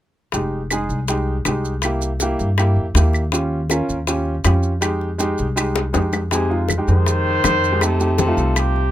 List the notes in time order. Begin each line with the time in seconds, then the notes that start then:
0.32 F1 G#3 D#4 G4, high bongo, maracas
0.71 G#3 D#4 G#4, high bongo, claves, maracas
0.89 C2, maracas
1.08 G#3 D#4 G4, high bongo, maracas
1.45 C2 G#3 D#4 G4, high bongo, low bongo, claves, maracas
1.65 maracas
1.82 A#3 E4 G4, high bongo, claves, maracas
2.01 high bongo, maracas
2.20 A#3 E4 G4, high bongo, maracas
2.39 G2, high bongo, maracas
2.58 A#3 E4 G4, high bongo, claves, maracas
2.76 F2
2.95 D#2 A#3 E4 G4, high bongo, low bongo, maracas
3.13 high bongo, claves, maracas
3.32 C#4 F4 G4, high bongo, maracas
3.70 C#4 F4 A#4, high bongo, claves, maracas
3.89 D#2, maracas
4.07 C#4 F4 G4, high bongo, maracas
4.44 F2 C#4 F4 G4, high bongo, low bongo, claves, maracas
4.63 maracas
4.81 G#3 D#4 G4, high bongo, claves, maracas
5.01 high bongo
5.18 G#3 D#4 G4, high bongo, maracas
5.38 C2, high bongo, maracas
5.56 G#3 D#4 G4, high bongo, claves, maracas
5.76 high bongo
5.93 F2 G#3 D#4 G4, low bongo, maracas
6.13 low bongo, claves, maracas
6.31 C3 G#3 D#4 G4 G#4, high bongo, high conga, maracas
6.49 G#3 D#4 F4, high conga
6.69 high bongo, high conga, claves, maracas
6.78 G#3 D#4 G4
6.88 F2 D#3 C5, high conga, maracas
7.06 high bongo, high conga, maracas
7.27 high conga
7.44 F2, high bongo, low bongo, high conga, claves, maracas
7.64 maracas
7.71 G#3 D#4 G4
7.81 C3 A3 D#4 G4 A4, high bongo, high conga, claves, maracas
7.99 A3 D#4 G4, high bongo, high conga, maracas
8.18 C3 A4, high bongo, high conga, maracas
8.27 A3 D#4 F4
8.37 C2, high bongo, high conga, maracas
8.56 C3 G4, high bongo, high conga, claves, maracas
8.76 high conga